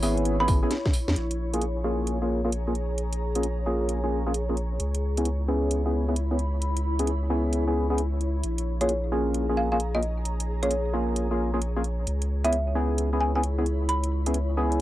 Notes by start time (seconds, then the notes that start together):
Already playing: E4 C#5 B5
0.03 G#1 B3 C#4 E4 G#4, open hi-hat
0.17 closed hi-hat
0.25 closed hi-hat
0.40 B3 C#4 E4 G#4 B5
0.48 G#1, kick, open hi-hat
0.63 B3 C#4 E4 G#4
0.71 snare, closed hi-hat
0.85 kick, snare
0.93 open hi-hat
1.08 E2, snare
1.16 A#1 G#4, closed hi-hat
1.31 closed hi-hat
1.54 A#3 C#4 F4 G#4, closed hi-hat
1.62 closed hi-hat
1.74 A#5
1.84 A#3 C#4 F4 G#4
2.07 closed hi-hat
2.22 A#3 C#4 F4 G#4
2.45 A#3 C#4 F4 G#4
2.52 closed hi-hat
2.67 A#3 C#4 F4 G#4
2.75 closed hi-hat
2.98 closed hi-hat
3.13 closed hi-hat
3.35 A#3 C#4 F4 G#4, closed hi-hat
3.43 closed hi-hat
3.66 A#3 C#4 F4 G#4
3.89 closed hi-hat
4.04 A#3 C#4 F4 G#4
4.27 A#3 C#4 F4 G#4
4.34 closed hi-hat
4.49 A#3 C#4 F4 G#4
4.57 closed hi-hat
4.80 C#2 E4, closed hi-hat
4.95 closed hi-hat
5.17 B3 C#4 E4 G#4, closed hi-hat
5.25 B5, closed hi-hat
5.48 B3 C#4 E4 G#4
5.71 closed hi-hat
5.86 B3 C#4 E4 G#4
6.08 B3 C#4 E4 G#4
6.16 closed hi-hat
6.31 B3 C#4 E4 G#4
6.39 closed hi-hat
6.62 closed hi-hat
6.77 closed hi-hat
6.99 B3 C#4 E4 G#4, closed hi-hat
7.07 closed hi-hat
7.30 B3 C#4 E4 G#4
7.53 closed hi-hat
7.67 B3 C#4 E4 G#4
7.90 B3 C#4 E4 G#4
7.98 closed hi-hat
8.21 closed hi-hat
8.43 A#1 G#4, closed hi-hat
8.58 closed hi-hat
8.64 A#5
8.81 A#3 C#4 F4 G#4 C#5, closed hi-hat
8.86 C#5, closed hi-hat
9.12 A#3 C#4 F4 G#4
9.34 closed hi-hat
9.49 A#3 C#4 F4 G#4
9.57 F5
9.72 A#3 C#4 F4 G#4 F5
9.80 closed hi-hat
9.95 A#3 C#4 F4 G#4 D#5
10.03 closed hi-hat
10.25 closed hi-hat
10.40 closed hi-hat
10.63 A#3 C#4 F4 G#4 C#5, closed hi-hat
10.71 closed hi-hat
10.94 A#3 C#4 F4 G#4
11.16 closed hi-hat
11.31 A#3 C#4 F4 G#4
11.54 A#3 C#4 F4 G#4
11.62 closed hi-hat
11.76 A#3 C#4 F4 G#4
11.84 closed hi-hat
12.07 C#2 E4, closed hi-hat
12.22 closed hi-hat
12.45 B3 C#4 E4 G#4 E5, closed hi-hat
12.53 closed hi-hat
12.58 B5
12.75 B3 C#4 E4 G#4
12.98 closed hi-hat
13.13 B3 C#4 E4 G#4
13.21 G#5
13.35 B3 C#4 E4 G#4 G#5
13.43 closed hi-hat
13.58 B3 C#4 E4 G#4
13.66 closed hi-hat
13.89 B5, closed hi-hat
14.04 closed hi-hat
14.26 B3 C#4 E4 G#4, closed hi-hat
14.34 closed hi-hat
14.57 B3 C#4 E4 G#4
14.72 closed hi-hat